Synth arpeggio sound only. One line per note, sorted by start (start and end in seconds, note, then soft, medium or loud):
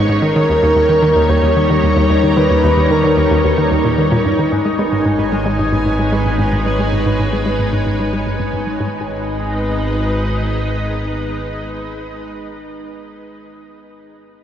0.09 0.19 G#2 medium
0.22 0.35 D#3 medium
0.36 0.46 D#3 loud
0.50 0.59 D#2 medium
0.63 0.72 D#2 loud
0.76 0.86 D#2 medium
0.89 1.01 D#3 medium
1.03 1.12 D#3 loud
1.16 1.26 D#2 medium
1.29 1.39 D#2 loud
1.43 1.53 D#2 medium
1.56 1.69 D#3 medium
1.70 1.80 D#3 loud
1.84 1.93 D#2 medium
1.97 2.06 D#2 loud
2.10 2.20 D#2 medium
2.23 2.36 D#3 medium
2.37 2.46 D#3 loud
2.50 2.60 D#2 medium
2.63 2.73 D#2 loud
2.77 2.86 D#2 medium
2.90 3.03 D#3 medium
3.04 3.13 D#3 loud
3.17 3.27 D#2 medium
3.31 3.40 D#2 loud
3.44 3.54 D#2 medium
3.58 3.70 D#3 medium
3.71 3.84 D#2 medium
3.84 3.94 A#2 medium
3.98 4.11 D#3 medium
4.11 4.17 A#2 loud
4.25 4.38 G2 medium
4.39 4.51 D#3 medium
4.52 4.61 G#2 medium
4.65 4.78 G#3 medium
4.79 4.88 G#3 loud
4.93 5.01 G#2 medium
5.06 5.15 G#2 loud
5.19 5.28 G#2 medium
5.32 5.45 G#3 medium
5.46 5.55 G#3 loud
5.59 5.68 G#2 medium
5.72 5.82 G#2 medium
5.86 5.95 G#2 medium
5.99 6.11 G#3 medium
6.12 6.22 G#3 medium
6.26 6.35 G#2 medium
6.39 6.48 G#2 medium
6.53 6.62 G#2 medium
6.66 6.78 G#3 medium
6.79 6.89 G#3 loud
6.93 7.02 G#2 medium
7.06 7.15 G#2 loud
7.19 7.29 G#2 medium
7.33 7.45 G#3 medium
7.46 7.55 G#3 medium
7.59 7.69 G#2 medium
7.73 7.82 G#2 medium
7.87 7.96 G#2 medium
8.00 8.12 G#3 medium
8.13 8.22 G#3 medium
8.27 8.36 G#2 medium
8.40 8.49 G#2 medium
8.53 8.63 G#2 medium
8.67 8.79 G#3 medium
8.80 9.05 G#2 medium